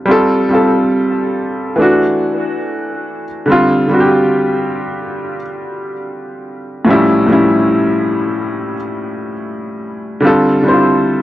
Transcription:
0.06 G3 C4
0.10 F4 A4
0.49 G3 C4 F4
0.55 A4
1.76 E3 A3 D4
1.82 F#4
3.46 D3 G3 C4
3.52 F4
3.87 D3 G3 C4
3.93 F#4
4.00 G4
6.85 A2 F3 G3
6.89 C#4 E4
7.27 A2 F3 G3
7.31 C#4 E4
10.20 D3 G3 C4
10.25 F4 A4
10.62 D3 G3 C4
10.66 E4 C5
10.73 F4

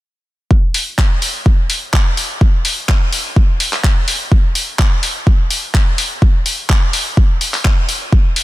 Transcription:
0.51 kick
0.74 open hi-hat
0.98 kick, clap
1.22 open hi-hat
1.46 kick
1.70 open hi-hat
1.93 kick, clap
2.17 open hi-hat
2.41 kick
2.65 open hi-hat
2.89 kick, clap
3.12 open hi-hat
3.36 kick
3.60 open hi-hat
3.73 clap, open hi-hat
3.84 kick, clap
4.08 open hi-hat
4.32 kick
4.55 open hi-hat
4.79 kick, clap
5.03 open hi-hat
5.27 kick
5.51 open hi-hat
5.74 kick, clap
5.98 open hi-hat
6.22 kick
6.46 open hi-hat
6.70 kick, clap
6.93 open hi-hat
7.17 kick
7.41 open hi-hat
7.54 clap, open hi-hat
7.65 kick, clap
7.89 open hi-hat
8.12 kick
8.36 open hi-hat

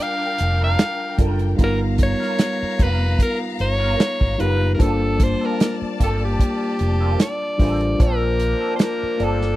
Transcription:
Already playing: G3 D4 F4 A#4 G5 A5
0.00 F5, muted clean electric guitar stroke
0.21 muted clean electric guitar stroke
0.38 F1, closed hi-hat
0.61 A#3 D4 F4 A#4 F5
0.79 snare, closed hi-hat
1.00 muted clean electric guitar stroke
1.17 F#1 G3 A#3 D4 F4 A4 A#4, kick, closed hi-hat
1.21 A#4
1.39 muted clean electric guitar stroke, closed hi-hat
1.57 G1 G3 B3 D#4 F4 A#4 F5 A#5, kick, closed hi-hat
1.61 A#4
1.98 muted clean electric guitar stroke, kick, closed hi-hat
2.03 C#5
2.20 G3 B3 F4 A#4, snare
2.39 muted clean electric guitar stroke, snare, closed hi-hat
2.63 muted fingered electric bass stroke
2.79 F1 G3 B3 F4 A#4, kick, closed hi-hat
2.83 B4
3.00 muted clean electric guitar stroke
3.19 A#4, muted clean electric guitar stroke, kick, closed hi-hat
3.40 muted clean electric guitar stroke
3.59 G1 C#5, closed hi-hat
3.80 G3 B3 F4 A#4
4.00 snare, closed hi-hat
4.21 G#1, muted clean electric guitar stroke, kick
4.37 F#1 G3 B3 D#4 F4 G4 A#4 B4, closed hi-hat
4.61 muted clean electric guitar stroke
4.74 G3 D4 F4 A#4
4.79 G1 A#3 C4 F4 A4 C5 D5 A5, kick, closed hi-hat
5.20 C5, muted clean electric guitar stroke, kick, closed hi-hat
5.41 A#3 C4 F4 A4 A#4
5.60 muted clean electric guitar stroke, snare, closed hi-hat
5.82 muted fingered electric bass stroke
5.99 G1 A#3 C4 F4 A4, kick, closed hi-hat
6.21 G4, muted clean electric guitar stroke
6.39 muted clean electric guitar stroke, kick, closed hi-hat
6.61 muted clean electric guitar stroke
6.79 F1, closed hi-hat
7.01 A#3 C4 F4 A4
7.20 D5, snare, closed hi-hat
7.41 muted clean electric guitar stroke
7.58 A1 G3 A#3 C4 D4 F4 A4 A#4 C5, kick, open hi-hat
7.81 muted clean electric guitar stroke, closed hi-hat
7.98 A#1 F3 A#3 C4 D4 F4 A4 C5 D5 A5, kick, closed hi-hat
8.03 A#4
8.39 muted clean electric guitar stroke, closed hi-hat
8.60 F3 C4 D4 A4
8.76 C5, closed hi-hat
8.80 A#4, snare
9.03 muted fingered electric bass stroke
9.17 G1 F3 A#3 C4 D4 F4 A4 C5 D5, closed hi-hat
9.24 A4
9.41 muted clean electric guitar stroke, snare

